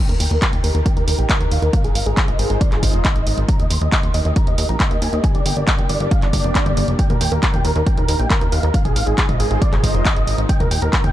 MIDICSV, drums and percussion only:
0, 0, Header, 1, 2, 480
1, 0, Start_track
1, 0, Key_signature, -3, "major"
1, 0, Tempo, 437956
1, 1899, Time_signature, 4, 2, 24, 8
1, 12192, End_track
2, 0, Start_track
2, 0, Title_t, "Drums"
2, 101, Note_on_c, 9, 42, 40
2, 211, Note_off_c, 9, 42, 0
2, 220, Note_on_c, 9, 46, 103
2, 330, Note_off_c, 9, 46, 0
2, 340, Note_on_c, 9, 42, 39
2, 450, Note_off_c, 9, 42, 0
2, 459, Note_on_c, 9, 36, 114
2, 460, Note_on_c, 9, 39, 115
2, 460, Note_on_c, 9, 42, 87
2, 568, Note_off_c, 9, 36, 0
2, 570, Note_off_c, 9, 39, 0
2, 570, Note_off_c, 9, 42, 0
2, 581, Note_on_c, 9, 42, 40
2, 691, Note_off_c, 9, 42, 0
2, 701, Note_on_c, 9, 46, 87
2, 810, Note_off_c, 9, 46, 0
2, 820, Note_on_c, 9, 42, 40
2, 930, Note_off_c, 9, 42, 0
2, 939, Note_on_c, 9, 36, 112
2, 941, Note_on_c, 9, 42, 90
2, 1049, Note_off_c, 9, 36, 0
2, 1050, Note_off_c, 9, 42, 0
2, 1061, Note_on_c, 9, 42, 37
2, 1171, Note_off_c, 9, 42, 0
2, 1180, Note_on_c, 9, 46, 101
2, 1290, Note_off_c, 9, 46, 0
2, 1300, Note_on_c, 9, 42, 39
2, 1410, Note_off_c, 9, 42, 0
2, 1419, Note_on_c, 9, 36, 113
2, 1420, Note_on_c, 9, 39, 116
2, 1420, Note_on_c, 9, 42, 92
2, 1529, Note_off_c, 9, 36, 0
2, 1530, Note_off_c, 9, 39, 0
2, 1530, Note_off_c, 9, 42, 0
2, 1541, Note_on_c, 9, 42, 39
2, 1651, Note_off_c, 9, 42, 0
2, 1661, Note_on_c, 9, 46, 90
2, 1770, Note_off_c, 9, 46, 0
2, 1781, Note_on_c, 9, 42, 38
2, 1890, Note_off_c, 9, 42, 0
2, 1899, Note_on_c, 9, 36, 121
2, 1900, Note_on_c, 9, 42, 90
2, 2009, Note_off_c, 9, 36, 0
2, 2010, Note_off_c, 9, 42, 0
2, 2021, Note_on_c, 9, 42, 41
2, 2131, Note_off_c, 9, 42, 0
2, 2141, Note_on_c, 9, 46, 105
2, 2251, Note_off_c, 9, 46, 0
2, 2262, Note_on_c, 9, 42, 38
2, 2371, Note_off_c, 9, 42, 0
2, 2379, Note_on_c, 9, 36, 123
2, 2381, Note_on_c, 9, 39, 116
2, 2381, Note_on_c, 9, 42, 89
2, 2489, Note_off_c, 9, 36, 0
2, 2491, Note_off_c, 9, 39, 0
2, 2491, Note_off_c, 9, 42, 0
2, 2501, Note_on_c, 9, 42, 38
2, 2611, Note_off_c, 9, 42, 0
2, 2620, Note_on_c, 9, 46, 89
2, 2730, Note_off_c, 9, 46, 0
2, 2741, Note_on_c, 9, 42, 39
2, 2850, Note_off_c, 9, 42, 0
2, 2859, Note_on_c, 9, 36, 121
2, 2861, Note_on_c, 9, 42, 90
2, 2969, Note_off_c, 9, 36, 0
2, 2971, Note_off_c, 9, 42, 0
2, 2981, Note_on_c, 9, 39, 36
2, 2981, Note_on_c, 9, 42, 37
2, 3091, Note_off_c, 9, 39, 0
2, 3091, Note_off_c, 9, 42, 0
2, 3099, Note_on_c, 9, 36, 60
2, 3100, Note_on_c, 9, 46, 105
2, 3209, Note_off_c, 9, 36, 0
2, 3210, Note_off_c, 9, 46, 0
2, 3220, Note_on_c, 9, 42, 39
2, 3330, Note_off_c, 9, 42, 0
2, 3340, Note_on_c, 9, 36, 118
2, 3340, Note_on_c, 9, 39, 115
2, 3340, Note_on_c, 9, 42, 92
2, 3449, Note_off_c, 9, 36, 0
2, 3449, Note_off_c, 9, 39, 0
2, 3449, Note_off_c, 9, 42, 0
2, 3460, Note_on_c, 9, 42, 40
2, 3570, Note_off_c, 9, 42, 0
2, 3580, Note_on_c, 9, 46, 92
2, 3690, Note_off_c, 9, 46, 0
2, 3701, Note_on_c, 9, 42, 38
2, 3810, Note_off_c, 9, 42, 0
2, 3820, Note_on_c, 9, 36, 123
2, 3820, Note_on_c, 9, 42, 89
2, 3929, Note_off_c, 9, 36, 0
2, 3930, Note_off_c, 9, 42, 0
2, 3941, Note_on_c, 9, 42, 39
2, 4050, Note_off_c, 9, 42, 0
2, 4061, Note_on_c, 9, 46, 109
2, 4170, Note_off_c, 9, 46, 0
2, 4181, Note_on_c, 9, 42, 37
2, 4290, Note_off_c, 9, 42, 0
2, 4300, Note_on_c, 9, 36, 118
2, 4300, Note_on_c, 9, 39, 115
2, 4300, Note_on_c, 9, 42, 88
2, 4409, Note_off_c, 9, 36, 0
2, 4410, Note_off_c, 9, 39, 0
2, 4410, Note_off_c, 9, 42, 0
2, 4421, Note_on_c, 9, 42, 36
2, 4531, Note_off_c, 9, 42, 0
2, 4540, Note_on_c, 9, 46, 91
2, 4649, Note_off_c, 9, 46, 0
2, 4660, Note_on_c, 9, 42, 38
2, 4769, Note_off_c, 9, 42, 0
2, 4779, Note_on_c, 9, 42, 86
2, 4780, Note_on_c, 9, 36, 123
2, 4889, Note_off_c, 9, 42, 0
2, 4890, Note_off_c, 9, 36, 0
2, 4900, Note_on_c, 9, 42, 36
2, 5010, Note_off_c, 9, 42, 0
2, 5020, Note_on_c, 9, 46, 106
2, 5130, Note_off_c, 9, 46, 0
2, 5141, Note_on_c, 9, 42, 39
2, 5251, Note_off_c, 9, 42, 0
2, 5260, Note_on_c, 9, 36, 115
2, 5261, Note_on_c, 9, 39, 114
2, 5261, Note_on_c, 9, 42, 90
2, 5369, Note_off_c, 9, 36, 0
2, 5371, Note_off_c, 9, 39, 0
2, 5371, Note_off_c, 9, 42, 0
2, 5382, Note_on_c, 9, 42, 39
2, 5491, Note_off_c, 9, 42, 0
2, 5501, Note_on_c, 9, 46, 94
2, 5611, Note_off_c, 9, 46, 0
2, 5622, Note_on_c, 9, 42, 37
2, 5731, Note_off_c, 9, 42, 0
2, 5740, Note_on_c, 9, 36, 121
2, 5741, Note_on_c, 9, 42, 85
2, 5849, Note_off_c, 9, 36, 0
2, 5851, Note_off_c, 9, 42, 0
2, 5862, Note_on_c, 9, 42, 38
2, 5971, Note_off_c, 9, 42, 0
2, 5981, Note_on_c, 9, 46, 106
2, 6090, Note_off_c, 9, 46, 0
2, 6220, Note_on_c, 9, 36, 121
2, 6220, Note_on_c, 9, 39, 113
2, 6220, Note_on_c, 9, 42, 85
2, 6329, Note_off_c, 9, 36, 0
2, 6330, Note_off_c, 9, 39, 0
2, 6330, Note_off_c, 9, 42, 0
2, 6341, Note_on_c, 9, 42, 36
2, 6450, Note_off_c, 9, 42, 0
2, 6460, Note_on_c, 9, 46, 89
2, 6570, Note_off_c, 9, 46, 0
2, 6580, Note_on_c, 9, 42, 37
2, 6690, Note_off_c, 9, 42, 0
2, 6700, Note_on_c, 9, 36, 121
2, 6700, Note_on_c, 9, 42, 85
2, 6809, Note_off_c, 9, 36, 0
2, 6810, Note_off_c, 9, 42, 0
2, 6821, Note_on_c, 9, 39, 34
2, 6821, Note_on_c, 9, 42, 37
2, 6930, Note_off_c, 9, 39, 0
2, 6930, Note_off_c, 9, 42, 0
2, 6940, Note_on_c, 9, 36, 61
2, 6941, Note_on_c, 9, 46, 103
2, 7049, Note_off_c, 9, 36, 0
2, 7050, Note_off_c, 9, 46, 0
2, 7062, Note_on_c, 9, 42, 37
2, 7171, Note_off_c, 9, 42, 0
2, 7180, Note_on_c, 9, 36, 116
2, 7181, Note_on_c, 9, 39, 110
2, 7181, Note_on_c, 9, 42, 84
2, 7290, Note_off_c, 9, 36, 0
2, 7291, Note_off_c, 9, 39, 0
2, 7291, Note_off_c, 9, 42, 0
2, 7301, Note_on_c, 9, 42, 37
2, 7411, Note_off_c, 9, 42, 0
2, 7421, Note_on_c, 9, 46, 92
2, 7530, Note_off_c, 9, 46, 0
2, 7541, Note_on_c, 9, 42, 37
2, 7651, Note_off_c, 9, 42, 0
2, 7660, Note_on_c, 9, 36, 116
2, 7661, Note_on_c, 9, 42, 90
2, 7770, Note_off_c, 9, 36, 0
2, 7770, Note_off_c, 9, 42, 0
2, 7781, Note_on_c, 9, 42, 38
2, 7781, Note_on_c, 9, 47, 80
2, 7891, Note_off_c, 9, 42, 0
2, 7891, Note_off_c, 9, 47, 0
2, 7901, Note_on_c, 9, 46, 106
2, 8011, Note_off_c, 9, 46, 0
2, 8021, Note_on_c, 9, 42, 35
2, 8131, Note_off_c, 9, 42, 0
2, 8140, Note_on_c, 9, 36, 118
2, 8141, Note_on_c, 9, 39, 106
2, 8141, Note_on_c, 9, 42, 88
2, 8250, Note_off_c, 9, 36, 0
2, 8251, Note_off_c, 9, 39, 0
2, 8251, Note_off_c, 9, 42, 0
2, 8261, Note_on_c, 9, 42, 37
2, 8261, Note_on_c, 9, 47, 78
2, 8370, Note_off_c, 9, 42, 0
2, 8370, Note_off_c, 9, 47, 0
2, 8381, Note_on_c, 9, 46, 89
2, 8490, Note_off_c, 9, 46, 0
2, 8501, Note_on_c, 9, 42, 37
2, 8611, Note_off_c, 9, 42, 0
2, 8620, Note_on_c, 9, 36, 114
2, 8621, Note_on_c, 9, 42, 84
2, 8730, Note_off_c, 9, 36, 0
2, 8730, Note_off_c, 9, 42, 0
2, 8741, Note_on_c, 9, 42, 35
2, 8741, Note_on_c, 9, 47, 60
2, 8850, Note_off_c, 9, 42, 0
2, 8850, Note_off_c, 9, 47, 0
2, 8861, Note_on_c, 9, 46, 102
2, 8970, Note_off_c, 9, 46, 0
2, 8982, Note_on_c, 9, 42, 39
2, 9091, Note_off_c, 9, 42, 0
2, 9100, Note_on_c, 9, 36, 115
2, 9102, Note_on_c, 9, 39, 110
2, 9102, Note_on_c, 9, 42, 84
2, 9210, Note_off_c, 9, 36, 0
2, 9211, Note_off_c, 9, 39, 0
2, 9211, Note_off_c, 9, 42, 0
2, 9221, Note_on_c, 9, 42, 37
2, 9331, Note_off_c, 9, 42, 0
2, 9341, Note_on_c, 9, 46, 86
2, 9451, Note_off_c, 9, 46, 0
2, 9461, Note_on_c, 9, 42, 38
2, 9571, Note_off_c, 9, 42, 0
2, 9580, Note_on_c, 9, 36, 114
2, 9581, Note_on_c, 9, 42, 91
2, 9689, Note_off_c, 9, 36, 0
2, 9691, Note_off_c, 9, 42, 0
2, 9701, Note_on_c, 9, 42, 38
2, 9701, Note_on_c, 9, 47, 83
2, 9811, Note_off_c, 9, 42, 0
2, 9811, Note_off_c, 9, 47, 0
2, 9821, Note_on_c, 9, 46, 101
2, 9931, Note_off_c, 9, 46, 0
2, 9941, Note_on_c, 9, 42, 38
2, 10051, Note_off_c, 9, 42, 0
2, 10060, Note_on_c, 9, 36, 110
2, 10060, Note_on_c, 9, 39, 109
2, 10060, Note_on_c, 9, 42, 87
2, 10169, Note_off_c, 9, 36, 0
2, 10170, Note_off_c, 9, 39, 0
2, 10170, Note_off_c, 9, 42, 0
2, 10182, Note_on_c, 9, 42, 39
2, 10182, Note_on_c, 9, 47, 78
2, 10291, Note_off_c, 9, 42, 0
2, 10291, Note_off_c, 9, 47, 0
2, 10301, Note_on_c, 9, 46, 83
2, 10411, Note_off_c, 9, 46, 0
2, 10421, Note_on_c, 9, 42, 39
2, 10530, Note_off_c, 9, 42, 0
2, 10539, Note_on_c, 9, 36, 114
2, 10541, Note_on_c, 9, 42, 86
2, 10649, Note_off_c, 9, 36, 0
2, 10650, Note_off_c, 9, 42, 0
2, 10660, Note_on_c, 9, 39, 34
2, 10660, Note_on_c, 9, 42, 38
2, 10660, Note_on_c, 9, 47, 62
2, 10770, Note_off_c, 9, 39, 0
2, 10770, Note_off_c, 9, 42, 0
2, 10770, Note_off_c, 9, 47, 0
2, 10779, Note_on_c, 9, 36, 58
2, 10781, Note_on_c, 9, 46, 98
2, 10888, Note_off_c, 9, 36, 0
2, 10890, Note_off_c, 9, 46, 0
2, 10900, Note_on_c, 9, 42, 39
2, 11010, Note_off_c, 9, 42, 0
2, 11019, Note_on_c, 9, 36, 108
2, 11020, Note_on_c, 9, 39, 111
2, 11020, Note_on_c, 9, 42, 88
2, 11129, Note_off_c, 9, 36, 0
2, 11129, Note_off_c, 9, 39, 0
2, 11129, Note_off_c, 9, 42, 0
2, 11141, Note_on_c, 9, 42, 39
2, 11250, Note_off_c, 9, 42, 0
2, 11261, Note_on_c, 9, 46, 87
2, 11371, Note_off_c, 9, 46, 0
2, 11381, Note_on_c, 9, 42, 38
2, 11490, Note_off_c, 9, 42, 0
2, 11499, Note_on_c, 9, 36, 109
2, 11501, Note_on_c, 9, 42, 95
2, 11608, Note_off_c, 9, 36, 0
2, 11610, Note_off_c, 9, 42, 0
2, 11620, Note_on_c, 9, 42, 43
2, 11620, Note_on_c, 9, 47, 85
2, 11730, Note_off_c, 9, 42, 0
2, 11730, Note_off_c, 9, 47, 0
2, 11740, Note_on_c, 9, 46, 98
2, 11850, Note_off_c, 9, 46, 0
2, 11860, Note_on_c, 9, 42, 40
2, 11970, Note_off_c, 9, 42, 0
2, 11978, Note_on_c, 9, 36, 112
2, 11980, Note_on_c, 9, 39, 109
2, 11980, Note_on_c, 9, 42, 92
2, 12088, Note_off_c, 9, 36, 0
2, 12089, Note_off_c, 9, 39, 0
2, 12089, Note_off_c, 9, 42, 0
2, 12100, Note_on_c, 9, 42, 40
2, 12100, Note_on_c, 9, 47, 82
2, 12192, Note_off_c, 9, 42, 0
2, 12192, Note_off_c, 9, 47, 0
2, 12192, End_track
0, 0, End_of_file